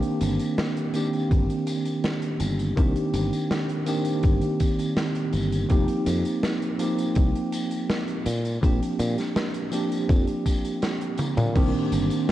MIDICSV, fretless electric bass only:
0, 0, Header, 1, 2, 480
1, 0, Start_track
1, 0, Key_signature, -3, "minor"
1, 0, Tempo, 731707
1, 1820, Time_signature, 4, 2, 24, 8
1, 8080, End_track
2, 0, Start_track
2, 0, Title_t, "Fretless electric bass"
2, 0, Program_c, 0, 35
2, 140, Note_on_c, 0, 31, 87
2, 244, Note_off_c, 0, 31, 0
2, 860, Note_on_c, 0, 31, 87
2, 964, Note_off_c, 0, 31, 0
2, 1578, Note_on_c, 0, 31, 78
2, 1783, Note_off_c, 0, 31, 0
2, 1820, Note_on_c, 0, 36, 95
2, 1924, Note_off_c, 0, 36, 0
2, 2058, Note_on_c, 0, 31, 96
2, 2163, Note_off_c, 0, 31, 0
2, 2779, Note_on_c, 0, 31, 86
2, 2883, Note_off_c, 0, 31, 0
2, 3499, Note_on_c, 0, 31, 81
2, 3703, Note_off_c, 0, 31, 0
2, 3740, Note_on_c, 0, 29, 96
2, 3844, Note_off_c, 0, 29, 0
2, 3979, Note_on_c, 0, 41, 92
2, 4083, Note_off_c, 0, 41, 0
2, 4699, Note_on_c, 0, 36, 88
2, 4803, Note_off_c, 0, 36, 0
2, 5419, Note_on_c, 0, 46, 77
2, 5623, Note_off_c, 0, 46, 0
2, 5660, Note_on_c, 0, 34, 97
2, 5764, Note_off_c, 0, 34, 0
2, 5900, Note_on_c, 0, 46, 94
2, 6004, Note_off_c, 0, 46, 0
2, 6621, Note_on_c, 0, 41, 87
2, 6724, Note_off_c, 0, 41, 0
2, 7461, Note_on_c, 0, 46, 93
2, 7561, Note_off_c, 0, 46, 0
2, 7581, Note_on_c, 0, 36, 99
2, 7684, Note_off_c, 0, 36, 0
2, 7819, Note_on_c, 0, 31, 95
2, 7923, Note_off_c, 0, 31, 0
2, 8080, End_track
0, 0, End_of_file